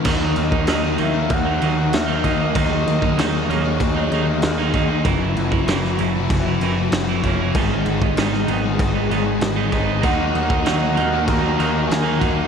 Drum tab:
CC |x-x-x-x-x-x-x-x-|x-x-x-x-x-x-x-x-|x-x-x-x-x-x-x-x-|x-x-x-x-x-x-x-x-|
SD |----o-------o---|----o-------o---|----oo------o---|----oo------o---|
BD |o--o----o-----o-|o--o----o-----o-|o--o----o-----o-|o--o----o-----o-|

CC |x-x-x-x-x-x-x-x-|
SD |----o-------o---|
BD |o--o----o-----o-|